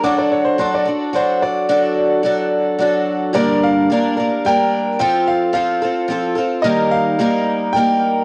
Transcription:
X:1
M:3/4
L:1/16
Q:1/4=109
K:Dphr
V:1 name="Grand piano"
d' d ^c =c c' d z2 c2 d2- | d6 z6 | [K:Gm] d2 f6 g4 | g2 f2 f4 z4 |
e2 f6 g4 |]
V:2 name="Twelve-string acoustic guitar"
[^F,D^FA]4 [F,DFA]2 [DFA]2 [F,DFA]4 | [^F,D^FA]4 [F,DFA]4 [F,DFA]4 | [K:Gm] [G,,D,G,B,DB]4 [G,B,DB]2 [G,B,DB]2 [G,B,DB]4 | [F,CFA]4 [F,CFA]2 [CFA]2 [F,CFA]2 [CFA]2 |
[E,G,B,EB]4 [G,B,EB]4 [G,B,EB]4 |]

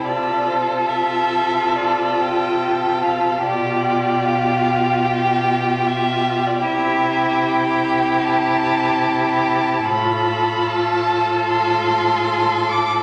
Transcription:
X:1
M:4/4
L:1/16
Q:1/4=74
K:Flyd
V:1 name="Violin"
d2 c2 e4 d2 g4 f2 | d4 f4 g4 e3 d | e4 g4 a6 a2 | b4 a4 c'6 d'2 |]
V:2 name="Violin"
A16 | G16 | G16 | A16 |]
V:3 name="Viola"
F16 | F16 | E16 | F16 |]
V:4 name="Cello" clef=bass
C,16 | B,,16 | C,16 | A,,16 |]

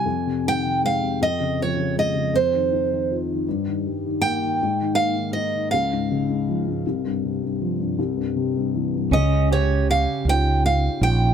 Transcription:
X:1
M:6/8
L:1/16
Q:3/8=53
K:Dblyd
V:1 name="Steel-string acoustic guitar"
a2 g2 f2 e2 d2 e2 | c4 z6 g2- | g2 f2 e2 f6- | f6 z6 |
e2 d2 f2 g2 f2 g2 |]
V:2 name="Clean electric guitar"
z12 | z12 | z12 | z12 |
D2 G8- G2 |]
V:3 name="Upright piano" clef=bass
F,, C, E, C, A, C, F,, D, F, D, A, D, | F,, E, E E, F E, G,, E, G, E, B, E, | A,, E, B, E, E E, D,, A,, D, A,, F, A,, | C,, G,, C, G,, F, G,, C,, G,, C, G,, =E, G,, |
D,6 [DEF]4 [DEF]2 |]
V:4 name="Fretless electric bass" clef=bass
z12 | z12 | z12 | z12 |
D,,6 D,,4 B,,,2 |]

